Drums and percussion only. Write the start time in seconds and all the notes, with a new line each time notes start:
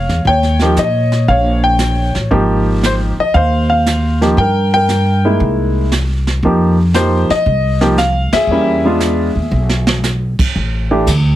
0.09 snare
0.25 brush sweep, kick
0.43 snare
0.59 snare
0.77 snare, hi-hat pedal
1.12 snare
1.28 brush sweep, kick
1.79 snare, hi-hat pedal
2.15 snare
2.31 brush sweep, kick
2.83 snare, hi-hat pedal
3.34 brush sweep, kick
3.86 snare, hi-hat pedal
4.22 snare
4.37 brush sweep, kick
4.89 snare, hi-hat pedal
5.40 brush sweep, kick
5.92 snare, hi-hat pedal
6.27 snare
6.43 brush sweep, kick
6.94 snare, hi-hat pedal
7.30 snare
7.46 brush sweep, kick
7.81 snare
7.98 snare, hi-hat pedal
8.33 snare, ride
8.49 brush sweep
9.00 snare, hi-hat pedal
9.69 snare
9.87 snare
10.04 snare, hi-hat pedal
10.39 kick, crash
10.55 kick
11.07 kick, hi-hat pedal, ride